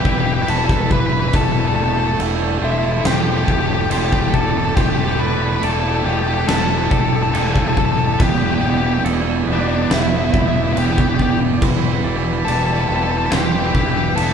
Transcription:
Already playing: B2 E3 G3
0.01 E1 E4 G4 B4, kick
0.09 E4 G4 B4
0.17 E4 G4 B4
0.24 E4 G4 B4
0.31 E4 G4 B4
0.38 E4 G4 B4
0.47 E1 C4 E4 A4 B4, crash
0.55 E4 A4 B4
0.63 E4 A4 B4
0.69 E4 A4 B4, kick, snare
0.80 E4 A4 B4
0.86 E4 B4
0.90 E3 E4 B4, kick
0.96 B4
1.00 E4 B4
1.07 E4 B4
1.13 B4
1.18 E4 B4
1.24 E4 B4
1.28 B4
1.33 E1 E3 E4 A4 B4, kick, crash
1.42 E4 A4
1.49 E4 A4
1.57 E4 A4
1.65 E4 A4
1.73 E1 A3 E4 A4
1.80 E4 A4
1.88 E4 A4
1.93 E4 A4
1.99 E4 A4
2.04 A4
2.08 E4 A4
2.13 A4
2.19 E1 E3 E4 A4, crash
2.27 E4 A4
2.35 E4 A4
2.43 E4 A4
2.50 E4 A4
2.58 E1 E4 A4
2.62 A3 E4 C5
2.67 E4 A4
2.71 E4 A4
2.79 E4
2.83 E4 A4
2.90 E4 A4
2.97 E4 A4
3.04 E1 C4 E4 G4 A4 C5, snare, crash
3.12 E4 G4 A4
3.20 E4 G4 A4
3.28 E4 G4 A4
3.36 E4 G4 A4
3.43 E4 G4 A4
3.48 E1 E4 G4, kick
3.52 A4
3.59 E4 G4 A4
3.66 E4 G4 A4
3.73 E4 G4 A4
3.81 E4 G4 A4
3.90 E1 C4 E4 G4 A4 C5, crash
3.97 E4 G4 A4
4.05 E4 G4 A4
4.13 E4 G4 A4, kick
4.20 E4 G4 A4
4.28 E4 G4 A4
4.34 E3 E4 A4 D5, kick
4.38 A4
4.44 E4 A4
4.50 E4 A4
4.58 E4 A4
4.65 E4 A4
4.75 E1 E3 E4 G4 A4 C5, kick, crash
4.82 E4 G4 A4
4.90 E4 G4 A4
4.98 E4 G4 A4
5.04 E4 G4 A4
5.12 E4 G4 A4
5.19 E1 A3 E4 B4 D5
5.24 A4 B4
5.30 E4 A4 B4
5.37 E4 A4
5.42 E4 A4 B4
5.49 A4 B4
5.53 E4 B4
5.60 E1 E3 E4 A4 D5, crash
5.64 E4 A4
5.69 A4
5.75 E4 A4
5.80 E4 A4
5.88 E4 A4
5.95 E4 A4
5.99 A4
6.04 E1 A3 E4 G4 A4
6.12 E4 G4 A4
6.20 E4 G4 A4
6.27 E4 G4 A4
6.34 E4 G4 A4
6.41 E4 G4 A4
6.47 E1 D4 A4 B4, snare, crash
6.52 E4 A4
6.59 E4 A4
6.67 E4 A4
6.75 E4 A4
6.81 E4 A4
6.89 E1 E4 G4 A4, kick
6.98 E4 A4
7.04 E4 A4
7.09 E4 A4
7.16 A4
7.20 E4 A4
7.27 E4 A4
7.32 E1 D4 E4 G4 A4, crash
7.36 A4
7.41 E4 G4 A4
7.47 G4 A4
7.52 E4 G4 A4
7.56 E4 A4, kick
7.62 G4 A4
7.67 E4 A4
7.71 E4 G4 A4
7.77 E3 E4 A4, kick
7.82 A4
7.89 E4 A4
7.97 E4 A4
8.04 E4 A4
8.12 E4 A4
8.19 E1 E2 B3 E4 G4 B4, kick, crash
8.28 B3 E4 G4
8.34 B3 E4
8.38 G4
8.43 B3 E4 G4
8.51 B3 E4 G4
8.59 E1 B2 B3 E4 G4
8.66 B3 E4 G4
8.74 B3 E4 G4
8.82 B3 E4
8.86 B3 E4 G4
8.94 G4
8.98 B3 E4
9.03 E1 E3 B3 E4 A4, crash
9.12 B3 E4
9.21 B3 E4
9.28 B3 E4
9.36 B3 E4
9.44 E1 B3 E4 B4
9.49 G3 B3 D4 E4
9.59 B3 D4 E4
9.66 B3 D4 E4
9.75 B3 D4 E4
9.82 B3 D4 E4
9.90 E1 B3 E4 B4, snare, crash
9.98 B3 E4
10.06 B3 E4
10.14 B3 E4
10.21 B3 E4
10.30 E1 B3 E4, kick
10.38 B3 E4
10.45 B3 E4
10.52 B3 E4
10.56 B3 E4
10.64 E4
10.68 B3 E4
10.73 E1 B3 E4 B4
10.77 B3 G4, crash
10.84 B3 E4 G4
10.91 B3 E4 G4
10.98 B3 E4 G4, kick
11.06 B3 E4 G4
11.15 B3 E4 G4
11.19 E3 E4 G4 D5, kick
11.23 B3
11.30 B3 E4 G4
11.38 B3 E4
11.44 B3 E4
11.53 B3 E4
11.61 E1 E2 C4 E4 B4, kick, crash
11.70 E4 B4
11.78 E4 B4
11.85 E4 B4
11.94 E4 B4
12.01 E1 E4 B4 D5
12.06 E3 E4 B4
12.16 E4 B4
12.23 E4 B4
12.31 E4 B4
12.39 E4 B4
12.45 E1 G3 E4 A4 B4 D5, crash
12.52 E4 A4 B4
12.59 E4 A4
12.63 A4 B4
12.70 E4 B4
12.74 E4 A4
12.79 A4 B4
12.85 E4 B4
12.89 E1 C4 E4 A4
12.94 A4 B4
12.99 E4 B4
13.04 E4 A4
13.09 A4 B4
13.17 E4 A4 B4
13.24 E4 A4 B4
13.30 E1 C4 E4 G4 B4, snare, crash
13.37 E4 G4 B4
13.44 E4 G4
13.49 G4 B4
13.55 E4 B4
13.59 E4 G4
13.64 G4 B4
13.69 E4 B4
13.74 E1 E4 G4 B4, kick
13.80 G4 B4
13.85 E4 B4
13.89 E4 G4
13.95 G4 B4
14.00 E4 G4 B4
14.08 E4 B4
14.16 E1 B3 E4 A4 B4, crash
14.24 E4 A4 B4

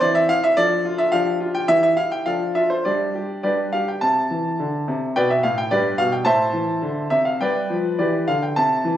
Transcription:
0.01 E3 C4 E4 D5
0.15 E5
0.29 E4 F5
0.44 E5
0.57 F3 D4 A4 D5
0.85 F4
0.98 E5
1.12 F3 D4 G4 F5
1.40 F4
1.55 G5
1.68 E3 E4 G4 E5
1.83 E5
1.97 E4 F5
2.12 G5
2.26 F3 D4 A4 F5
2.55 F4 E5
2.70 C5
2.85 G3 D4 G4 D5
3.15 G4
3.43 G3 D4 G4 B4 D5
3.73 G4 F5
3.88 G5
4.01 C3 A5
4.31 E3
4.59 D3
4.88 C3
5.16 B2 B4 D5 G5
5.30 E5
5.43 A2 F5
5.58 G5
5.71 G2 G4 B4 D5
5.98 B2 F5
6.12 G5
6.25 A2 C5 E5 A5
6.53 E3
6.82 D3
7.10 C3 E5
7.25 F5
7.41 G3 B4 D5 G5
7.70 F3
7.99 E3 G4 B4 D5
8.28 D3 F5
8.43 G5
8.56 C3 A5
8.85 E3

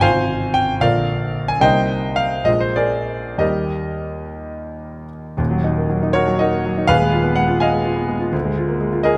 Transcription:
0.00 G#1 C3 C4 F4 C5 F5 G#5
0.54 G5
0.80 A#1 D3 A#3 F4 A#4 D5 F5
1.48 G#5
1.61 C2 G3 A#3 D#4 C5 D#5 G5
2.16 F5
2.44 A#1 G#3 A#3 F4 D#5
2.60 C5
2.76 G#4 A#4 D5
3.38 D#2 G3 A#3 D#4 G4 A#4 D#5
5.37 D#1 D#2
5.51 F#3
5.64 D#4
5.77 A#3
5.89 F#3
6.03 D#4
6.13 F#4 A#4 C#5
6.28 F#3
6.39 D#4 F#4 A#4 D#5
6.52 A#3
6.66 F#3
6.78 D#4
6.87 D#1 D#2 G#4 B4 F5
7.00 G#3
7.13 F4
7.24 B3
7.36 G#3 F#5
7.48 F4
7.60 D#5 F5 G#5
7.72 G#3
7.85 F4
7.96 B3
8.08 G#3
8.19 F4
8.33 D2
8.45 G#3
8.58 F4
8.68 A#3
8.80 G#3
8.92 F4
9.03 G#4 A#4 D#5

